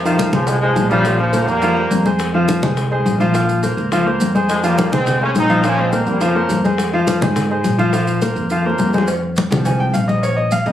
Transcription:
Already playing: upright bass F2
0.04 trombone section C3 D#3, grand piano F3 F4 F5, high bongo, high conga, maracas
0.18 high bongo, high conga, maracas
0.33 upright bass C2, trombone section C#3 F3, grand piano G#3 G#4 C5, high bongo, high conga, low conga, maracas
0.47 trombone section F3 G#3, high bongo, high conga, maracas
0.61 trombone section F3 G#3, grand piano G#3 G#4 C5, high bongo, high conga
0.76 upright bass A#1, high bongo, low bongo, high conga, maracas
0.89 trombone section C#3 G3, grand piano F3 F4 F5, high conga, maracas
1.05 grand piano F3 F4 F5, high bongo, high conga, maracas
1.19 trombone section C#3 F3, high bongo, high conga
1.33 grand piano A#3 A#4 C5, high bongo, high conga, maracas
1.47 upright bass F2, trombone section G3 A#3, high bongo, high conga, maracas
1.62 grand piano F3 F4 F5, high bongo, high conga, maracas
1.77 grand piano A#3 A#4 C5, high bongo, high conga
1.91 upright bass F2, high bongo, low bongo, high conga, maracas
2.05 grand piano G#3 G#4 C5, high conga, maracas
2.19 high bongo, high conga, maracas
2.34 grand piano F3 F4 F5, high bongo, high conga
2.48 high bongo, high conga, maracas
2.62 upright bass C2, grand piano G#3 G#4 C5, high bongo, high conga, low conga, maracas
2.77 high bongo, high conga, maracas
2.91 grand piano G#3 G#4 C5, high bongo, high conga
3.06 upright bass A#1, high bongo, low bongo, high conga, maracas
3.20 grand piano F3 F4 F5, high conga, maracas
3.34 grand piano F3 F4 F5, high bongo, maracas
3.49 high bongo, high conga, maracas
3.63 grand piano A#3 A#4 C5, high bongo, high conga, maracas
3.77 upright bass C#2, high bongo, high conga, maracas
3.92 grand piano F3 F4 F5, high bongo, high conga, maracas
4.06 grand piano A#3 A#4 C5, high bongo, high conga
4.20 upright bass F2, high bongo, low bongo, high conga, maracas
4.35 grand piano G#3 G#4 C5, high conga, maracas
4.49 trombone section F3 G#3, high bongo, high conga, maracas
4.63 grand piano F3 F4 F5, trombone section G3 A#3, high bongo, high conga, maracas
4.78 high bongo, high conga, maracas
4.91 upright bass C2, grand piano G#3 G#4 C5, trombone section G#3 C4, high bongo, high conga, low conga, maracas
5.07 high bongo, high conga, low conga, maracas
5.21 grand piano G#3 G#4 C5, trombone section A#3 C#4, high bongo, high conga
5.35 upright bass A#1, trombone section C4 D#4, high bongo, low bongo, high conga, maracas
5.49 grand piano F3 F4 F5, high conga, maracas
5.64 grand piano F3 F4 F5, trombone section A#3 C#4, high bongo, maracas
5.78 trombone section G#3 C4, high bongo, high conga
5.93 grand piano A#3 A#4 C5, high bongo, high conga, maracas
6.06 upright bass F2, trombone section G3 A#3, high bongo, high conga, maracas
6.21 trombone section C#3 F3, grand piano F3 F4 F5, high bongo, high conga, maracas
6.35 grand piano A#3 A#4 C5, high bongo, high conga
6.50 upright bass F2, high bongo, low bongo, high conga, maracas
6.65 grand piano G#3 G#4 C5, high conga, maracas
6.78 high bongo, high conga, maracas
6.92 grand piano F3 F4 F5, high bongo, high conga
7.07 high bongo, high conga, maracas
7.21 upright bass G#2, grand piano G#3 G#4 C5, high conga, low conga, maracas
7.36 high bongo, high conga, low conga, maracas
7.50 grand piano G#3 G#4 C5, high conga
7.64 upright bass A#1, high bongo, low bongo, high conga, maracas
7.78 grand piano F3 F4 F5, high conga, maracas
7.93 grand piano F3 F4 F5, high bongo, high conga, maracas
8.07 high bongo, high conga, maracas
8.22 grand piano A#3 A#4 C5, high bongo, high conga, maracas
8.36 upright bass F2, high bongo, high conga, maracas
8.50 grand piano F3 F4 F5, high bongo, high conga, maracas
8.65 grand piano A#3 A#4 C5, high conga
8.70 low bongo
8.78 upright bass F2, low bongo, high conga, maracas
8.89 low bongo
8.93 grand piano G#3 G#4 C5, high conga, maracas
8.98 low bongo
9.07 cowbell, high conga, maracas
9.23 high conga
9.36 cowbell, high conga, maracas
9.51 upright bass C2, grand piano F3 G#3 C4, cowbell, high conga, low conga, maracas
9.65 grand piano G#5, cowbell, high conga, low conga, maracas
9.80 grand piano G5, high conga
9.93 upright bass A#1, grand piano F5, cowbell, high conga, maracas
10.08 grand piano D#5, cowbell, high conga, maracas
10.23 grand piano C#5, cowbell, high conga, maracas
10.36 grand piano D#5, high conga
10.51 grand piano F5, cowbell, high conga, maracas
10.66 upright bass F2, grand piano C#3 A#3 C4 D#5, cowbell, high conga, maracas

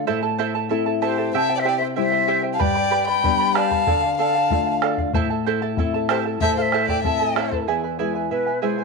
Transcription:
0.07 nylon-string guitar A2, charango E4 A4 C5 E5 A5
0.23 charango E4 A4 A5
0.38 charango E4 A4 C5 E5 A5
0.55 charango E4 A4 A5
0.69 nylon-string guitar A3 C4 E4, charango E4 A4 E5 A5
0.86 charango E4 A4 A5
1.02 charango E4 A4 C5 E5 A5, violin G4, quena C5
1.18 charango E4 A4 A5
1.34 nylon-string guitar C3, charango E4 G4 C5 E5 G5, violin E5, quena A5
1.49 charango E4 C5 G5
1.56 violin D5, quena G5
1.61 violin C5, quena E5
1.65 charango E4 G4 C5 E5 G5, violin D5, quena G5
1.77 violin C5, charango C5 G5, quena E5
1.82 charango E4
1.96 nylon-string guitar G3 C4 E4, charango E4 C5 E5 G5, violin C5, quena E5
2.12 charango E4 C5 G5
2.28 charango E4 G4 C5 E5 G5
2.43 charango E4 C5 G5
2.54 violin F5, quena A5
2.59 nylon-string guitar G2, charango G4 B4 D5 G5 B5, violin D5, quena G5, bombo low
2.75 charango B4 D5 B5
2.91 charango G4 B4 D5 G5 B5
3.07 charango B4 D5 B5, violin G5, quena B5
3.23 nylon-string guitar G3 B3 D4, charango B4 D5 G5 B5, bombo low
3.40 charango B4 D5 B5
3.55 charango G4 B4 D5 G5 B5, violin F5, quena A5, bombo rim
3.71 charango B4 D5 B5, bombo low
3.87 nylon-string guitar D3, charango A4 D5 F5, bombo low
4.03 charango D5 F5
4.18 charango A4 D5 F5, violin F5, quena A5
4.35 charango D5 F5
4.50 nylon-string guitar A3 D4 F4, charango A4 D5 F5, bombo low
4.67 charango D5 F5
4.82 charango A4 D5 F5, bombo rim
4.98 charango D5 F5, bombo low
5.13 nylon-string guitar A2, charango E4 A4 C5 E5 A5, bombo low
5.30 charango E4 A4 A5
5.46 charango E4 A4 C5 E5 A5
5.62 charango E4 A4 A5
5.77 nylon-string guitar A3 C4 E4, charango E4 A4 E5 A5, bombo low
5.94 charango E4 A4 A5
6.09 charango E4 A4 C5 E5 A5, violin G4, quena C5, bombo rim
6.25 charango E4 A4 A5
6.40 nylon-string guitar A2, charango E4 A4 C5 E5 A5, violin E5, quena A5, bombo low
6.57 charango E4 A4 A5, violin C5, quena F5
6.62 quena E5
6.72 charango E4 A4 C5 E5 A5, bombo rim
6.88 charango E4 A4 A5, violin D5, quena G5, bombo low
7.03 nylon-string guitar A3 C4 E4, charango E4 A4 E5 A5, violin E5, quena A5, bombo low
7.20 charango E4 A4 A5
7.36 charango E4 A4 C5 E5 A5, bombo rim
7.51 charango E4 A4 A5, bombo low
7.67 nylon-string guitar E2, charango E4 G#4 B4 E5 G#5
7.83 charango E4 B4 G#5
7.99 nylon-string guitar G#3 B3 E4, charango E4 G#4 B4 E5 G#5
8.15 charango E4 B4 G#5
8.30 nylon-string guitar B2, charango E4 B4 E5 G#5, quena B4
8.46 charango E4 B4 G#5
8.62 nylon-string guitar G#3 E4, charango E4 G#4 B4 E5 G#5, quena C5
8.78 charango E4 B4 G#5

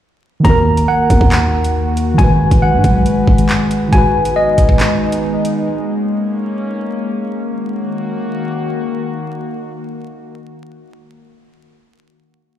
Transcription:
0.40 synth keys D#3 A#3
0.45 808-style bass D#2, ambient pad D#3 A#3 F#4, synth keys F#4, tine electric piano A#5, kick, closed hi-hat
0.49 synth keys A#4
0.77 closed hi-hat
0.88 tine electric piano F#5
1.10 808-style bass D#2, kick, closed hi-hat
1.21 808-style bass D#2, kick
1.32 clap, closed hi-hat
1.64 closed hi-hat
1.97 closed hi-hat
2.14 synth keys D#3 G#3
2.18 808-style bass G#1, ambient pad G#3 B4, synth keys F#4, tine electric piano G#5, kick, closed hi-hat
2.23 synth keys B4
2.51 808-style bass G#1, kick, closed hi-hat
2.62 tine electric piano F#5
2.73 808-style bass G#2
2.84 808-style bass B1, kick, closed hi-hat
3.06 closed hi-hat
3.27 808-style bass G#1, kick
3.38 closed hi-hat
3.49 clap, closed hi-hat
3.71 closed hi-hat
3.88 synth keys D#3 G#3
3.93 ambient pad G#3 B3 D#4, synth keys F#4, tine electric piano G#5, kick, closed hi-hat
3.97 synth keys B4
4.25 closed hi-hat
4.36 tine electric piano D#5
4.58 kick, closed hi-hat
4.69 kick
4.80 clap, closed hi-hat
5.12 closed hi-hat
5.45 closed hi-hat
5.67 ambient pad A#3 C#4
7.40 ambient pad D#3 A#3 F#4

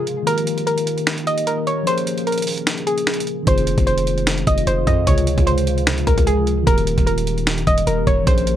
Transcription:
Already playing: tine electric piano C3 C#3 F4 G#4
0.07 closed hi-hat
0.23 tine electric piano D#3 A#3
0.27 ambient pad A#3, tine electric piano G4 A#4, synth pluck A#4, closed hi-hat
0.38 closed hi-hat
0.47 closed hi-hat
0.58 closed hi-hat
0.67 synth pluck A#4, closed hi-hat
0.78 closed hi-hat
0.87 closed hi-hat
0.98 closed hi-hat
1.07 finger snap, snare, closed hi-hat
1.18 closed hi-hat
1.27 synth pluck D#5, closed hi-hat
1.38 closed hi-hat
1.47 synth pluck A#4, closed hi-hat
1.67 synth pluck C#5, closed hi-hat
1.83 tine electric piano F3 C#4, synth pluck C5, closed hi-hat
1.88 tine electric piano G#4 A#4
1.98 closed hi-hat
2.07 closed hi-hat
2.18 closed hi-hat
2.27 synth pluck A#4, closed hi-hat
2.32 closed hi-hat
2.38 closed hi-hat
2.42 closed hi-hat
2.47 open hi-hat
2.58 closed hi-hat
2.67 finger snap, snare, closed hi-hat
2.78 closed hi-hat
2.87 synth pluck G#4, closed hi-hat
2.98 closed hi-hat
3.07 finger snap, snare, closed hi-hat
3.14 closed hi-hat
3.20 closed hi-hat
3.27 closed hi-hat
3.43 tine electric piano D#3 C4
3.47 808-style bass F1, ambient pad F4, tine electric piano F4 G#4, synth pluck C5, kick, closed hi-hat
3.58 closed hi-hat
3.67 closed hi-hat
3.78 808-style bass F1, kick, closed hi-hat
3.87 synth pluck C5, closed hi-hat
3.98 closed hi-hat
4.07 closed hi-hat
4.18 closed hi-hat
4.27 finger snap, snare, closed hi-hat
4.38 closed hi-hat
4.47 808-style bass F1, synth pluck D#5, kick, closed hi-hat
4.58 closed hi-hat
4.67 808-style bass F1, synth pluck C5, closed hi-hat
4.87 808-style bass F2, synth pluck D#5, kick, closed hi-hat
5.03 808-style bass C#2, tine electric piano C3 C#3, kick, closed hi-hat
5.07 tine electric piano F4 G#4, synth pluck C#5
5.18 closed hi-hat
5.27 closed hi-hat
5.38 808-style bass C#2, kick, closed hi-hat
5.47 synth pluck C5, closed hi-hat
5.58 closed hi-hat
5.67 closed hi-hat
5.78 closed hi-hat
5.87 finger snap, snare, closed hi-hat
5.98 closed hi-hat
6.07 808-style bass C#2, synth pluck A#4, kick, closed hi-hat
6.18 808-style bass C#2, kick, closed hi-hat
6.27 synth pluck G#4, closed hi-hat
6.47 closed hi-hat
6.63 tine electric piano D#3 A#3
6.67 808-style bass D#1, tine electric piano G4 A#4, synth pluck A#4, kick, closed hi-hat
6.78 closed hi-hat
6.87 closed hi-hat
6.98 808-style bass D#1, kick, closed hi-hat
7.07 synth pluck A#4, closed hi-hat
7.18 closed hi-hat
7.27 closed hi-hat
7.38 closed hi-hat
7.47 finger snap, snare, closed hi-hat
7.58 closed hi-hat
7.67 808-style bass D#1, synth pluck D#5, kick, closed hi-hat
7.78 closed hi-hat
7.87 808-style bass D#1, synth pluck A#4, closed hi-hat
8.07 808-style bass D#1, synth pluck C#5, kick, closed hi-hat
8.23 808-style bass A#1, tine electric piano F3 C#4, synth pluck C5, kick, closed hi-hat
8.28 tine electric piano G#4 A#4
8.38 closed hi-hat
8.47 closed hi-hat

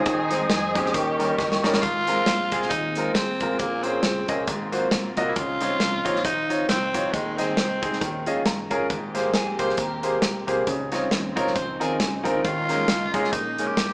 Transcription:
Already playing: string section C4 D#4 G#4, tonewheel organ G#5 D#6
0.06 fingered electric bass D#2, grand piano D#3, tonewheel organ C5 D#5, kick, closed hi-hat
0.30 grand piano G#3 C4 D#4 C5, snare, closed hi-hat
0.50 fingered electric bass F2, string section G#4, snare, closed hi-hat
0.75 grand piano G#3 C4 D#4 G#4, string section A#3 C#4 G4, kick, closed hi-hat
0.86 snare
0.94 fingered electric bass D#2, grand piano D#3, tonewheel organ A#4 D#5 G5 C#6, kick, closed hi-hat
1.19 grand piano G3 C#4 D#4 A#4, closed hi-hat
1.39 fingered electric bass F#1, kick, snare
1.52 snare
1.63 fingered electric bass G1, grand piano G3 C#4 D#4 A#4, snare
1.74 snare
1.82 fingered electric bass G#1, grand piano G#2, string section A#3 C4 F4 G#4, tenor saxophone F4, kick, closed hi-hat
2.07 grand piano G#3 C4 F4 A#4, snare, closed hi-hat
2.26 fingered electric bass A#1, snare, closed hi-hat
2.52 fingered electric bass C2, grand piano G#3 C4 F4 G#4, kick, closed hi-hat
2.62 snare
2.69 fingered electric bass D#2, tenor saxophone D#4, kick, closed hi-hat
2.95 grand piano G#3 C4 F4 A#4, closed hi-hat
3.14 fingered electric bass G#1, tenor saxophone C4, kick, snare, closed hi-hat
3.40 fingered electric bass A1, grand piano G#3 C4 F4 A#4, kick, closed hi-hat
3.58 fingered electric bass A#1, grand piano A#2, string section C#3, tenor saxophone A#3, kick, closed hi-hat
3.83 grand piano A#3 C#4 G#4 C5, tenor saxophone C4, closed hi-hat
4.03 fingered electric bass C#2, snare, closed hi-hat
4.28 fingered electric bass C2, grand piano A#3 C#4 G#4 D#5, kick, closed hi-hat
4.47 fingered electric bass G#1, grand piano G#2, string section F#3 A#3 F4, kick, closed hi-hat
4.72 grand piano A#3 F4 F#4 C5, closed hi-hat
4.91 fingered electric bass B1, kick, snare, closed hi-hat
5.17 fingered electric bass C2, grand piano A#3 F4 F#4 D#5, kick, closed hi-hat
5.29 tenor saxophone E4
5.36 fingered electric bass C#2, grand piano C#3, string section F3 D#4 F4, tenor saxophone F4, kick, closed hi-hat
5.61 grand piano C4 D#4 F4 C#5, snare, closed hi-hat
5.80 fingered electric bass C2, snare, closed hi-hat
6.05 fingered electric bass A#1, grand piano C4 D#4 F4 C#5, kick, closed hi-hat
6.16 snare
6.24 fingered electric bass G#1, tenor saxophone D#4, kick, closed hi-hat
6.49 grand piano C4 D#4 F4 C#5, closed hi-hat
6.69 fingered electric bass C2, tenor saxophone C4, kick, snare, closed hi-hat
6.94 grand piano C4 D#4 F4 C#5, kick, closed hi-hat
7.12 fingered electric bass D#2, grand piano D#3, string section D#3 G#3 C4, tenor saxophone G#3, kick, closed hi-hat
7.37 tenor saxophone C4, grand piano C4 D#4 G#4 D#5, snare, closed hi-hat
7.57 fingered electric bass C2, snare, closed hi-hat
7.82 grand piano C4 D#4 G#4 C5, kick, closed hi-hat
7.93 snare
8.01 fingered electric bass D#2, grand piano D#3, string section F3 C#4, kick, closed hi-hat
8.26 grand piano C#4 F4 G#4 D#5 F5, closed hi-hat
8.46 fingered electric bass F#1, grand piano A#5, kick, snare, closed hi-hat
8.70 fingered electric bass G1, grand piano C#4 F4 G#4 A#4, kick, closed hi-hat
8.89 fingered electric bass G#1, grand piano G#2, string section G#3 A#3 C4 G4, kick, closed hi-hat
9.14 grand piano A#3 G4 G#4 C5, snare, closed hi-hat
9.34 fingered electric bass A#1, clean electric guitar G#4, snare, closed hi-hat
9.59 fingered electric bass C2, grand piano A#3 G4 G#4 C5, clean electric guitar C5, kick, closed hi-hat
9.69 snare
9.77 fingered electric bass D#2, clean electric guitar A#4, kick, closed hi-hat
10.03 grand piano A#3 G4 G#4 C5, closed hi-hat
10.22 fingered electric bass B1, kick, snare, closed hi-hat
10.47 fingered electric bass C2, grand piano A#3 G4 G#4 C5, kick, closed hi-hat
10.66 fingered electric bass C#2, grand piano C#3, string section F3 C4 C#4 D#4, kick, closed hi-hat
10.92 grand piano C4 D#4 F4 C#5, snare, closed hi-hat
11.11 fingered electric bass D#2, snare, closed hi-hat
11.36 fingered electric bass C2, grand piano C4 D#4 F4 C#5, clean electric guitar A#4, kick, closed hi-hat
11.47 snare
11.55 fingered electric bass C#2, clean electric guitar C5, kick, closed hi-hat
11.80 fingered electric bass D#2, grand piano C4 D#4 F4 A#4, clean electric guitar G#4, closed hi-hat
12.00 fingered electric bass C#2, kick, snare, closed hi-hat
12.24 fingered electric bass D2, grand piano C4 D#4 F4 A#4, kick, closed hi-hat
12.44 fingered electric bass D#2, grand piano D#3, string section G#3 A#3, tenor saxophone F4, kick, closed hi-hat
12.69 grand piano G#3 C#4 D#4 A#4, snare, closed hi-hat
12.88 fingered electric bass C#2, snare, closed hi-hat
13.14 fingered electric bass C2, grand piano G#3 C#4 D#4 G#4, kick, closed hi-hat
13.24 snare
13.32 fingered electric bass A#1, tenor saxophone D#4, kick, closed hi-hat
13.58 grand piano G#3 C#4 D#4 A#4, closed hi-hat
13.67 tenor saxophone G4
13.77 fingered electric bass F#1, kick, snare, closed hi-hat

